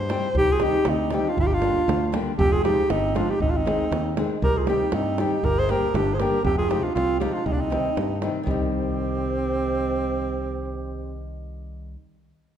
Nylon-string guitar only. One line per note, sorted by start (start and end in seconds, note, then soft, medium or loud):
0.09 0.27 G3 medium
0.09 0.27 C4 medium
0.09 0.28 D#4 medium
0.09 0.28 G4 medium
0.60 0.78 D#3 medium
0.60 0.78 G3 medium
0.60 0.79 C4 medium
0.60 0.79 D#4 medium
0.60 0.79 G4 medium
1.11 1.29 D#3 medium
1.11 1.30 G3 medium
1.11 1.30 C4 medium
1.11 1.30 D#4 medium
1.11 1.30 G4 medium
1.62 1.80 D3 medium
1.62 1.80 G3 medium
1.62 1.80 A#3 medium
1.62 1.81 D4 medium
1.62 1.81 G4 medium
2.12 2.31 D3 medium
2.12 2.31 G3 medium
2.12 2.31 A#3 medium
2.12 2.31 D4 medium
2.12 2.32 G4 medium
2.63 2.82 F3 medium
2.63 2.82 G#3 medium
2.63 2.82 C4 medium
2.63 2.82 F4 medium
2.63 2.83 G#4 medium
3.15 3.33 F3 medium
3.15 3.33 G#3 medium
3.15 3.33 C4 medium
3.15 3.33 F4 medium
3.15 3.34 G#4 medium
3.65 3.83 D#3 medium
3.65 3.84 G#3 medium
3.65 3.84 C4 medium
3.65 3.84 D#4 medium
3.65 3.84 G#4 medium
4.17 4.35 D#3 medium
4.17 4.35 G#3 medium
4.17 4.35 C4 medium
4.17 4.35 D#4 medium
4.17 4.36 G#4 medium
4.67 4.85 D#3 medium
4.67 4.85 G3 medium
4.67 4.86 C4 medium
4.67 4.86 D#4 medium
4.67 4.86 G4 medium
5.18 5.36 D#3 medium
5.18 5.36 G3 medium
5.18 5.36 C4 medium
5.18 5.37 D#4 medium
5.18 5.37 G4 medium
5.69 5.87 D3 medium
5.69 5.87 G3 medium
5.69 5.87 A#3 medium
5.69 5.87 D4 medium
5.69 5.87 G4 medium
6.20 6.37 D3 medium
6.20 6.38 G3 medium
6.20 6.38 A#3 medium
6.20 6.38 D4 medium
6.20 6.38 G4 medium
6.69 6.87 C3 medium
6.69 6.88 F3 medium
6.69 6.88 G#3 medium
6.69 6.88 C4 medium
6.69 6.88 F4 medium
7.20 7.38 C3 medium
7.20 7.39 F3 medium
7.20 7.39 G#3 medium
7.20 7.39 C4 medium
7.20 7.39 F4 medium
7.70 7.88 C3 medium
7.70 7.89 D#3 medium
7.70 7.89 G3 medium
7.70 7.89 C4 medium
7.70 7.89 D#4 medium
8.22 8.40 C3 medium
8.22 8.40 D#3 medium
8.22 8.40 G3 medium
8.22 8.41 C4 medium
8.22 8.40 D#4 medium
8.43 11.94 D#3 medium
8.43 11.95 G3 medium
8.48 11.96 C4 medium
8.48 11.97 D#4 medium